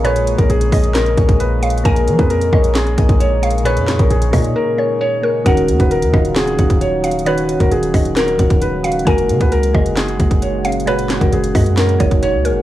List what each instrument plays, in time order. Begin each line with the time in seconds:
Already playing: 808-style bass A#1, ambient pad A#2 C#3 G#3 F4, synth keys A#3 G#4 A#4 C#5 D#5
0.03 synth keys A#2 G#4 C#5, felt piano B4, synth pluck C#5, closed hi-hat
0.16 closed hi-hat
0.27 closed hi-hat
0.38 808-style bass A#1, felt piano A#4, kick, closed hi-hat
0.50 808-style bass A#1, felt piano G#4, closed hi-hat
0.61 closed hi-hat
0.71 808-style bass A#1, synth keys A#3 G#4 D#5, synth pluck D#5, kick, open hi-hat
0.84 closed hi-hat
0.95 felt piano A#4, snare, clap, closed hi-hat
1.06 closed hi-hat
1.16 808-style bass A#1, synth keys A#3 G#4 C#5, kick, closed hi-hat
1.29 kick, closed hi-hat
1.40 felt piano B4, closed hi-hat
1.61 synth keys A#3 G#4 C#5, synth pluck F5, closed hi-hat
1.70 closed hi-hat
1.78 closed hi-hat
1.84 808-style bass A#1, synth keys A#3 G#4 A#4, ambient pad D#4, felt piano A#4, synth pluck G#5, kick, closed hi-hat
1.96 closed hi-hat
2.08 808-style bass F3, closed hi-hat
2.19 808-style bass F2, felt piano B4, kick, closed hi-hat
2.30 felt piano A#4, closed hi-hat
2.41 closed hi-hat
2.52 808-style bass A#1, synth keys A#3 G#4 C#5, synth pluck D#5, kick
2.64 closed hi-hat
2.75 felt piano G#4, snare, clap, closed hi-hat
2.87 closed hi-hat
2.96 808-style bass A#1, synth keys A#3 G#4 D#5, kick, closed hi-hat
3.09 808-style bass A#1, kick, closed hi-hat
3.20 felt piano C#5, closed hi-hat
3.42 synth keys A#3 G#4 C#5, synth pluck F5, closed hi-hat
3.50 closed hi-hat
3.58 closed hi-hat
3.64 synth keys A#2 G#4 C#5, felt piano B4, synth pluck C#5, closed hi-hat
3.77 808-style bass F2, closed hi-hat
3.88 snare, clap, closed hi-hat
3.99 808-style bass A#1, felt piano A#4, kick, closed hi-hat
4.10 808-style bass A#1, felt piano G#4, closed hi-hat
4.22 closed hi-hat
4.31 808-style bass A#2, synth keys A#3 G#4 C#5, synth pluck D#5, kick, open hi-hat
4.44 closed hi-hat
4.56 felt piano A#4
4.77 synth keys A#3 G#4 C#5, synth pluck C#5
5.01 felt piano C#5
5.22 synth keys A#3 G#4 C#5, synth pluck A#4
5.45 808-style bass D#1, synth keys D#3 C#4 F#4, ambient pad F#3, felt piano A#4, synth pluck F#5, kick, closed hi-hat
5.57 closed hi-hat
5.68 808-style bass D#2, closed hi-hat
5.80 808-style bass D#1, felt piano B4, kick, closed hi-hat
5.91 felt piano A#4, closed hi-hat
6.02 808-style bass D#2, closed hi-hat
6.12 808-style bass D#1, synth keys D#3 C#4 F4, synth pluck D#5, kick
6.25 closed hi-hat
6.36 felt piano G#4, snare, clap, closed hi-hat
6.47 closed hi-hat
6.57 808-style bass D#1, synth keys D#3 C#4 F#4, kick, closed hi-hat
6.70 kick, closed hi-hat
6.81 felt piano C#5, closed hi-hat
7.02 synth keys D#3 C#4 F#4, synth pluck F5, closed hi-hat
7.11 closed hi-hat
7.19 closed hi-hat
7.25 synth keys D#3 C#4 F#4, ambient pad G#3, felt piano B4, synth pluck C#5, closed hi-hat
7.38 closed hi-hat
7.49 closed hi-hat
7.60 808-style bass D#1, felt piano A#4, kick, closed hi-hat
7.71 808-style bass D#1, felt piano G#4, closed hi-hat
7.83 closed hi-hat
7.93 808-style bass D#1, synth keys D#3 C#4 F#4, synth pluck D#5, kick, open hi-hat
8.05 closed hi-hat
8.17 felt piano A#4, snare, clap, closed hi-hat
8.28 closed hi-hat
8.37 808-style bass D#1, synth keys D#3 C#4 F#4, kick, closed hi-hat
8.50 kick, closed hi-hat
8.62 felt piano B4, closed hi-hat
8.83 synth keys D#3 C#4 F#4, synth pluck F5, closed hi-hat
8.92 closed hi-hat
8.99 closed hi-hat
9.05 808-style bass F#1, ambient pad A#2 C#3 F#4, synth keys G#3 A#3 F#4, felt piano A#4, synth pluck G#5, kick, closed hi-hat
9.18 closed hi-hat
9.29 808-style bass C#3, closed hi-hat
9.41 808-style bass C#2, felt piano B4, kick, closed hi-hat
9.52 felt piano A#4, closed hi-hat
9.63 closed hi-hat
9.73 808-style bass F#1, synth keys G#3 A#3 G#4, synth pluck D#5, kick
9.86 closed hi-hat
9.97 felt piano G#4, snare, clap, closed hi-hat
10.08 closed hi-hat
10.18 808-style bass F#1, synth keys G#3 A#3 F#4, kick, closed hi-hat
10.31 kick, closed hi-hat
10.42 felt piano C#5, closed hi-hat
10.63 synth keys G#3 A#3 C#4, synth pluck F5, closed hi-hat
10.72 closed hi-hat
10.80 closed hi-hat
10.86 synth keys A#2 G#3 F#4, felt piano B4, synth pluck C#5, closed hi-hat
10.99 closed hi-hat
11.10 snare, clap, closed hi-hat
11.21 808-style bass F#1, felt piano A#4, kick, closed hi-hat
11.32 808-style bass F#1, felt piano G#4, closed hi-hat
11.44 closed hi-hat
11.54 808-style bass F#2, synth keys G#3 A#3 F#4, synth pluck D#5, kick, open hi-hat
11.66 closed hi-hat
11.77 felt piano A#4, snare, clap, closed hi-hat
11.89 closed hi-hat
11.99 808-style bass F#1, synth keys G#3 A#3 D#4, synth pluck C#5, kick, closed hi-hat
12.11 kick, closed hi-hat
12.23 felt piano C#5, closed hi-hat
12.34 808-style bass C#2
12.44 synth keys G#3 A#3 G#4, synth pluck A#4, closed hi-hat
12.51 808-style bass F#1